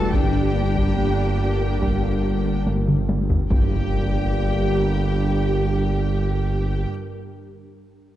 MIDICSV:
0, 0, Header, 1, 14, 480
1, 0, Start_track
1, 0, Key_signature, -2, "minor"
1, 0, Tempo, 845070
1, 71, Time_signature, 4, 2, 24, 8
1, 4638, End_track
2, 0, Start_track
2, 0, Title_t, "Violin section"
2, 0, Program_c, 0, 48
2, 0, Note_on_c, 0, 81, 69
2, 72, Note_off_c, 0, 81, 0
2, 74, Note_on_c, 0, 79, 56
2, 1490, Note_off_c, 0, 79, 0
2, 1990, Note_on_c, 0, 79, 45
2, 3887, Note_off_c, 0, 79, 0
2, 4638, End_track
3, 0, Start_track
3, 0, Title_t, "Violin section"
3, 0, Program_c, 1, 48
3, 0, Note_on_c, 1, 81, 72
3, 77, Note_off_c, 1, 81, 0
3, 78, Note_on_c, 1, 79, 60
3, 1514, Note_off_c, 1, 79, 0
3, 1995, Note_on_c, 1, 79, 56
3, 3893, Note_off_c, 1, 79, 0
3, 4638, End_track
4, 0, Start_track
4, 0, Title_t, "Ambient pad"
4, 0, Program_c, 2, 92
4, 0, Note_on_c, 2, 71, 68
4, 71, Note_on_c, 2, 70, 54
4, 72, Note_off_c, 2, 71, 0
4, 72, Note_on_c, 2, 62, 58
4, 73, Note_on_c, 2, 55, 60
4, 73, Note_on_c, 2, 67, 60
4, 1969, Note_off_c, 2, 55, 0
4, 1969, Note_off_c, 2, 67, 0
4, 1991, Note_off_c, 2, 70, 0
4, 1992, Note_off_c, 2, 62, 0
4, 1997, Note_on_c, 2, 55, 64
4, 1998, Note_on_c, 2, 67, 59
4, 2000, Note_on_c, 2, 62, 58
4, 2002, Note_on_c, 2, 70, 54
4, 3895, Note_off_c, 2, 55, 0
4, 3895, Note_off_c, 2, 67, 0
4, 3897, Note_off_c, 2, 62, 0
4, 3899, Note_off_c, 2, 70, 0
4, 4638, End_track
5, 0, Start_track
5, 0, Title_t, "Cello section"
5, 0, Program_c, 3, 48
5, 0, Note_on_c, 3, 69, 77
5, 73, Note_off_c, 3, 69, 0
5, 75, Note_on_c, 3, 67, 67
5, 1513, Note_off_c, 3, 67, 0
5, 1990, Note_on_c, 3, 67, 59
5, 3887, Note_off_c, 3, 67, 0
5, 4638, End_track
6, 0, Start_track
6, 0, Title_t, "Viola section"
6, 0, Program_c, 4, 48
6, 0, Note_on_c, 4, 66, 69
6, 74, Note_off_c, 4, 66, 0
6, 76, Note_on_c, 4, 62, 53
6, 1491, Note_off_c, 4, 62, 0
6, 1994, Note_on_c, 4, 67, 48
6, 3891, Note_off_c, 4, 67, 0
6, 4638, End_track
7, 0, Start_track
7, 0, Title_t, "Synth pluck"
7, 0, Program_c, 5, 84
7, 69, Note_on_c, 5, 55, 82
7, 142, Note_off_c, 5, 55, 0
7, 310, Note_on_c, 5, 58, 53
7, 383, Note_off_c, 5, 58, 0
7, 429, Note_on_c, 5, 55, 72
7, 502, Note_off_c, 5, 55, 0
7, 550, Note_on_c, 5, 58, 58
7, 623, Note_off_c, 5, 58, 0
7, 671, Note_on_c, 5, 62, 48
7, 743, Note_off_c, 5, 62, 0
7, 790, Note_on_c, 5, 55, 82
7, 862, Note_off_c, 5, 55, 0
7, 913, Note_on_c, 5, 58, 53
7, 984, Note_off_c, 5, 58, 0
7, 1033, Note_on_c, 5, 55, 80
7, 1105, Note_off_c, 5, 55, 0
7, 1155, Note_on_c, 5, 58, 57
7, 1226, Note_off_c, 5, 58, 0
7, 1394, Note_on_c, 5, 55, 75
7, 1465, Note_off_c, 5, 55, 0
7, 1514, Note_on_c, 5, 58, 57
7, 1585, Note_off_c, 5, 58, 0
7, 1633, Note_on_c, 5, 62, 48
7, 1704, Note_off_c, 5, 62, 0
7, 1753, Note_on_c, 5, 55, 69
7, 1825, Note_off_c, 5, 55, 0
7, 1871, Note_on_c, 5, 67, 51
7, 1943, Note_off_c, 5, 67, 0
7, 4638, End_track
8, 0, Start_track
8, 0, Title_t, "French horn section"
8, 0, Program_c, 6, 60
8, 0, Note_on_c, 6, 57, 73
8, 71, Note_on_c, 6, 55, 62
8, 73, Note_off_c, 6, 57, 0
8, 1489, Note_off_c, 6, 55, 0
8, 1999, Note_on_c, 6, 55, 56
8, 3896, Note_off_c, 6, 55, 0
8, 4638, End_track
9, 0, Start_track
9, 0, Title_t, "Trombone section"
9, 0, Program_c, 7, 61
9, 80, Note_on_c, 7, 58, 66
9, 82, Note_on_c, 7, 50, 66
9, 1791, Note_off_c, 7, 58, 0
9, 1792, Note_off_c, 7, 50, 0
9, 1997, Note_on_c, 7, 50, 54
9, 2000, Note_on_c, 7, 58, 56
9, 3895, Note_off_c, 7, 50, 0
9, 3897, Note_off_c, 7, 58, 0
9, 4638, End_track
10, 0, Start_track
10, 0, Title_t, "Double bass section"
10, 0, Program_c, 8, 48
10, 82, Note_on_c, 8, 43, 57
10, 500, Note_off_c, 8, 43, 0
10, 561, Note_on_c, 8, 43, 54
10, 980, Note_off_c, 8, 43, 0
10, 1035, Note_on_c, 8, 43, 53
10, 1457, Note_off_c, 8, 43, 0
10, 1516, Note_on_c, 8, 43, 41
10, 1937, Note_off_c, 8, 43, 0
10, 1990, Note_on_c, 8, 43, 56
10, 3887, Note_off_c, 8, 43, 0
10, 4638, End_track
11, 0, Start_track
11, 0, Title_t, "Sub bass"
11, 0, Program_c, 10, 38
11, 0, Note_on_c, 10, 28, 73
11, 77, Note_on_c, 10, 31, 65
11, 86, Note_off_c, 10, 28, 0
11, 1994, Note_off_c, 10, 31, 0
11, 1998, Note_on_c, 10, 31, 63
11, 3895, Note_off_c, 10, 31, 0
11, 4638, End_track
12, 0, Start_track
12, 0, Title_t, "Tuba"
12, 0, Program_c, 11, 58
12, 75, Note_on_c, 11, 31, 52
12, 496, Note_off_c, 11, 31, 0
12, 555, Note_on_c, 11, 31, 53
12, 977, Note_off_c, 11, 31, 0
12, 1038, Note_on_c, 11, 31, 52
12, 1458, Note_off_c, 11, 31, 0
12, 1510, Note_on_c, 11, 31, 48
12, 1934, Note_off_c, 11, 31, 0
12, 1988, Note_on_c, 11, 31, 58
12, 3885, Note_off_c, 11, 31, 0
12, 4638, End_track
13, 0, Start_track
13, 0, Title_t, "Impact"
13, 0, Program_c, 12, 103
13, 1991, Note_on_c, 12, 60, 57
13, 3910, Note_off_c, 12, 60, 0
13, 4638, End_track
14, 0, Start_track
14, 0, Title_t, "Taiko and cinematic ensemble drums"
14, 78, Note_on_c, 9, 41, 83
14, 135, Note_off_c, 9, 41, 0
14, 439, Note_on_c, 9, 41, 64
14, 496, Note_off_c, 9, 41, 0
14, 1038, Note_on_c, 9, 41, 69
14, 1094, Note_off_c, 9, 41, 0
14, 1515, Note_on_c, 9, 48, 69
14, 1572, Note_off_c, 9, 48, 0
14, 1637, Note_on_c, 9, 47, 78
14, 1694, Note_off_c, 9, 47, 0
14, 1755, Note_on_c, 9, 48, 80
14, 1812, Note_off_c, 9, 48, 0
14, 1875, Note_on_c, 9, 43, 80
14, 1932, Note_off_c, 9, 43, 0
14, 1997, Note_on_c, 9, 41, 82
14, 2054, Note_off_c, 9, 41, 0
14, 4638, End_track
0, 0, End_of_file